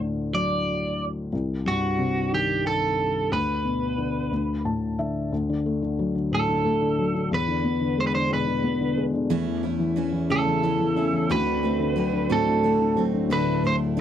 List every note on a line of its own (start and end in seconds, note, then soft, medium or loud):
0.00 1.29 D2 medium
0.00 0.96 A2 soft
0.00 1.29 D3 soft
0.33 1.30 F#3 soft
0.33 1.05 D5 medium
1.33 3.27 C2 medium
1.66 2.94 G2 soft
1.66 2.34 F#4 medium
1.99 3.27 C3 soft
2.32 3.28 D#3 soft
2.32 2.66 G4 medium
2.67 3.33 A4 medium
3.32 4.29 D2 medium
3.32 4.62 B4 medium
3.65 4.29 B2 soft
3.98 4.30 D3 soft
4.31 5.29 D2 soft
4.65 5.30 A2 soft
4.65 4.96 A5 medium
4.99 5.31 D3 soft
4.99 5.30 E5 medium
5.32 7.28 D2 medium
5.50 5.81 D3 soft
5.66 6.63 A3 soft
5.82 6.14 D3 soft
5.99 6.97 F#3 soft
6.15 6.47 D3 soft
6.32 7.29 A2 medium
6.32 7.29 A4 medium
6.49 6.80 D3 soft
6.65 7.29 A3 medium
6.82 7.13 D3 soft
6.99 7.31 F#3 medium
7.15 7.31 D3 soft
7.31 9.26 E2 medium
7.31 8.00 B4 medium
7.48 7.79 D3 soft
7.64 8.63 B3 medium
7.80 8.13 D3 medium
7.98 8.96 G#3 soft
7.98 8.06 C5 medium
8.07 8.13 B4 medium
8.15 8.46 D3 soft
8.15 8.31 C5 medium
8.31 9.27 B2 medium
8.31 9.03 B4 medium
8.47 8.79 D3 soft
8.64 9.28 B3 medium
8.81 9.12 D3 medium
8.97 9.30 G#3 medium
9.14 9.30 D3 medium
9.30 11.25 E2 medium
9.30 9.63 E3 medium
9.30 9.64 A3 medium
9.30 9.63 C#4 medium
9.30 9.62 E4 loud
9.47 9.78 E3 soft
9.63 9.96 A3 soft
9.63 9.96 C#4 medium
9.63 9.96 E4 medium
9.63 10.61 E4 medium
9.79 10.11 E3 medium
9.96 10.30 E3 medium
9.96 10.30 A3 medium
9.96 10.94 C#4 medium
9.96 10.29 C#4 medium
9.96 10.29 E4 medium
10.12 10.44 E3 medium
10.30 11.27 C#3 medium
10.30 10.62 E3 medium
10.30 10.62 A3 medium
10.30 10.63 C#4 medium
10.30 10.63 E4 medium
10.30 11.31 A4 medium
10.46 10.78 E3 medium
10.63 10.96 E3 medium
10.63 10.97 A3 medium
10.63 10.96 C#4 medium
10.63 11.28 E4 medium
10.63 10.95 E4 medium
10.79 11.11 E3 medium
10.95 11.29 A3 soft
10.95 11.28 C#4 medium
10.95 11.30 C#4 soft
10.95 11.30 E4 medium
11.13 11.29 E3 soft
11.30 13.27 D2 medium
11.30 11.63 D3 medium
11.30 11.63 A3 medium
11.30 11.63 C4 medium
11.30 11.62 F#4 medium
11.30 12.34 B4 loud
11.46 11.78 D3 soft
11.63 12.62 A3 medium
11.63 11.95 A3 soft
11.63 11.96 C4 soft
11.63 11.96 F#4 soft
11.79 12.11 D3 medium
11.96 12.30 D3 medium
11.96 12.95 F#3 medium
11.96 12.29 A3 medium
11.96 12.29 C4 medium
11.96 12.28 F#4 medium
12.13 12.45 D3 medium
12.30 13.28 A2 medium
12.30 12.62 D3 medium
12.30 12.63 A3 medium
12.30 12.63 C4 medium
12.30 12.63 F#4 medium
12.30 13.03 A4 medium
12.46 12.79 D3 medium
12.63 12.97 D3 medium
12.63 13.29 A3 medium
12.63 12.97 A3 medium
12.63 12.97 C4 medium
12.63 12.96 F#4 medium
12.80 13.12 D3 medium
12.96 13.29 F#3 medium
12.96 13.30 A3 soft
12.96 13.31 C4 soft
12.96 13.30 F#4 medium
13.13 13.30 D3 soft
13.29 14.01 D1 medium
13.29 14.01 D2 medium
13.29 13.64 D3 medium
13.29 13.64 A3 medium
13.29 13.64 D4 medium
13.29 13.63 E4 medium
13.29 13.63 B4 medium
13.64 14.01 A2 soft
13.64 13.97 A3 soft
13.64 13.97 D4 soft
13.64 13.97 E4 soft
13.64 13.75 C5 loud
13.97 14.01 D3 medium